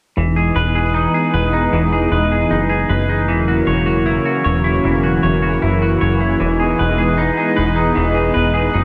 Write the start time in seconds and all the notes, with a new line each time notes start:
0.17 E1 E3 G#3 B3 D#4
0.36 G#4
0.56 E1 B4
0.75 G#4
0.94 D#4
1.14 G#4
1.34 E1 B4
1.53 D#4
1.73 E1 E3
1.93 G#4
2.11 E1 B4
2.32 G#4
2.51 F#1 D#4
2.70 G#4
2.89 F#1 B4
3.09 D#4
3.28 E1 C#3 E3 F#3 A#3
3.48 F#4
3.67 E1 C#5
3.86 F#4
4.06 E4
4.25 F#4
4.44 E1 C#5
4.64 E4
4.84 E1 E3
5.03 F#4
5.23 E1 C#5
5.42 F#4
5.62 F#1 E4
5.82 F#4
6.01 F#1 C#5
6.21 E4
6.40 E1 E3 G#3 B3 D#4
6.60 G#4
6.79 E1 B4
6.98 G#4
7.18 D#4
7.37 G#4
7.57 E1 B4
7.76 D#4
7.95 E1 E3
8.14 G#4
8.34 E1 B4
8.54 G#4
8.74 F#1 D#4